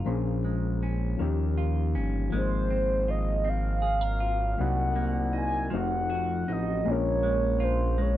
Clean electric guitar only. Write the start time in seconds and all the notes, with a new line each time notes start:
Already playing: C#4 F4 A#4
0.06 A#2
0.44 G#3
0.83 C#4
1.19 D#3
1.58 F4
1.95 C#4
2.32 G#3
2.70 C4
3.08 F4
3.44 C4
3.82 G#4
4.01 A#4
4.20 F4
4.58 C3
4.96 A#3
5.33 D#4
5.70 F3
6.10 F#4
6.48 D#4
6.86 A#2
7.23 G#3
7.60 F4
7.98 G#3